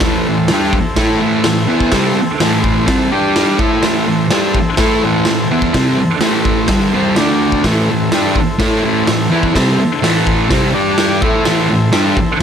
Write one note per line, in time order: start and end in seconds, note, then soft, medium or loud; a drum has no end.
0.00 0.26 A2 medium
0.00 3.08 E4 medium
0.00 3.09 A4 medium
0.00 3.09 C5 medium
0.00 kick loud
0.00 snare loud
0.00 open hi-hat medium
0.04 0.27 E3 medium
0.04 0.27 A3 loud
0.28 0.46 A2 medium
0.28 0.46 E3 medium
0.48 0.74 G3 medium
0.48 snare loud
0.48 open hi-hat medium
0.52 0.74 D4 loud
0.52 0.75 G4 loud
0.73 muted distorted electric guitar stroke medium
0.73 kick medium
0.96 1.21 A3 medium
0.96 1.21 E4 loud
0.96 1.21 A4 loud
0.96 kick loud
0.96 snare loud
0.96 open hi-hat medium
1.20 1.44 A2 medium
1.20 1.45 E3 medium
1.20 1.45 A3 medium
1.44 1.65 A2 medium
1.44 1.65 E3 medium
1.44 snare loud
1.44 open hi-hat medium
1.67 1.91 E3 medium
1.67 1.92 B3 loud
1.67 1.93 E4 loud
1.80 kick medium
1.92 2.15 C3 medium
1.92 2.16 G3 loud
1.92 2.17 C4 loud
1.92 kick medium
1.92 snare loud
1.92 open hi-hat medium
2.16 muted distorted electric guitar stroke medium
2.40 2.86 A2 medium
2.40 2.87 E3 medium
2.40 2.88 A3 loud
2.40 snare loud
2.40 open hi-hat medium
2.61 2.85 C6 medium
2.61 kick medium
2.86 3.11 C3 medium
2.86 3.10 G3 loud
2.86 3.12 C4 loud
2.86 3.11 A5 medium
2.86 kick loud
2.86 snare loud
2.86 open hi-hat medium
3.11 3.58 G3 medium
3.11 3.59 D4 medium
3.11 3.60 D4 medium
3.11 3.60 G4 medium
3.11 3.59 G4 loud
3.11 3.60 D5 medium
3.11 3.34 G5 medium
3.36 3.58 F5 medium
3.36 snare loud
3.36 open hi-hat medium
3.58 3.82 A3 medium
3.58 3.83 E4 loud
3.58 7.14 E4 medium
3.58 3.83 A4 loud
3.58 7.14 C5 medium
3.58 3.83 E5 medium
3.58 kick loud
3.62 7.14 A4 medium
3.82 4.06 A2 medium
3.82 4.05 E3 loud
3.82 4.07 A3 loud
3.82 snare loud
3.82 open hi-hat medium
4.07 4.27 A2 medium
4.07 4.26 E3 medium
4.31 4.55 G3 loud
4.31 4.55 D4 medium
4.31 4.55 G4 loud
4.31 snare loud
4.31 open hi-hat medium
4.55 muted distorted electric guitar stroke medium
4.55 kick medium
4.77 5.02 A3 medium
4.77 5.02 E4 loud
4.77 5.03 A4 medium
4.77 kick loud
4.77 snare loud
4.77 open hi-hat medium
5.03 5.26 A2 medium
5.03 5.26 E3 medium
5.03 5.27 A3 medium
5.25 5.46 A2 medium
5.25 5.46 E3 medium
5.25 snare loud
5.25 open hi-hat medium
5.51 5.73 E3 medium
5.51 5.74 B3 medium
5.51 5.75 E4 loud
5.62 kick medium
5.74 5.97 C3 medium
5.74 5.97 G3 medium
5.74 5.98 C4 loud
5.74 kick medium
5.74 snare loud
5.74 open hi-hat medium
5.98 muted distorted electric guitar stroke medium
6.21 6.68 A2 medium
6.21 6.69 E3 medium
6.21 6.69 A3 medium
6.21 snare loud
6.21 open hi-hat medium
6.45 kick medium
6.68 6.93 G2 medium
6.68 6.93 D3 medium
6.68 6.93 G3 loud
6.68 kick loud
6.68 snare loud
6.68 open hi-hat medium
6.93 7.17 C3 medium
6.93 7.17 G3 medium
6.93 7.17 C4 medium
6.93 7.06 B5 medium
7.08 7.18 A5 medium
7.16 7.64 D3 medium
7.16 7.65 A3 loud
7.16 7.64 D4 medium
7.16 7.65 D4 loud
7.16 7.63 A4 medium
7.16 7.65 D5 medium
7.16 7.62 G5 medium
7.16 snare loud
7.16 open hi-hat medium
7.52 kick medium
7.63 7.88 A2 medium
7.63 7.88 E3 medium
7.63 7.89 A3 loud
7.63 10.70 E4 medium
7.63 10.69 A4 medium
7.63 10.69 C5 medium
7.63 kick medium
7.63 snare loud
7.63 open hi-hat medium
7.90 8.08 A2 medium
7.90 8.09 E3 medium
8.12 8.35 G3 medium
8.12 8.36 D4 medium
8.12 8.36 G4 medium
8.12 snare loud
8.12 open hi-hat medium
8.36 muted distorted electric guitar stroke medium
8.36 kick medium
8.59 8.82 A3 medium
8.59 8.83 E4 medium
8.59 8.83 A4 medium
8.59 kick loud
8.59 snare loud
8.59 open hi-hat medium
8.83 9.06 A2 medium
8.83 9.06 E3 loud
8.83 9.08 A3 loud
9.07 9.26 A2 medium
9.07 9.27 E3 medium
9.07 snare loud
9.07 open hi-hat medium
9.30 9.54 E3 medium
9.30 9.54 B3 loud
9.30 9.55 E4 loud
9.43 kick medium
9.55 9.78 C3 medium
9.55 9.78 G3 medium
9.55 9.79 C4 medium
9.55 kick medium
9.55 snare loud
9.55 open hi-hat medium
9.79 muted distorted electric guitar stroke medium
10.02 10.49 A2 medium
10.02 10.49 E3 loud
10.02 10.50 A3 medium
10.02 snare loud
10.02 open hi-hat medium
10.27 kick medium
10.49 10.73 C3 loud
10.49 10.73 G3 loud
10.49 10.74 C4 loud
10.49 kick loud
10.49 snare loud
10.49 open hi-hat medium
10.74 11.21 G3 medium
10.74 11.21 D4 medium
10.74 11.22 G4 medium
10.74 11.21 G4 medium
10.74 11.22 D5 medium
10.74 10.96 A5 medium
10.98 11.21 G5 medium
10.98 snare loud
10.98 open hi-hat medium
11.21 11.45 A3 loud
11.21 12.43 E4 medium
11.21 11.45 E4 loud
11.21 12.43 A4 medium
11.21 11.46 A4 loud
11.21 12.43 C5 medium
11.21 11.43 E5 medium
11.21 kick loud
11.45 11.68 A2 medium
11.45 11.68 E3 loud
11.45 11.69 A3 loud
11.45 snare loud
11.45 open hi-hat medium
11.69 11.88 A2 medium
11.69 11.88 E3 medium
11.92 12.15 G3 medium
11.92 12.16 D4 loud
11.92 12.16 G4 loud
11.92 snare loud
11.92 open hi-hat medium
12.17 muted distorted electric guitar stroke medium
12.17 kick medium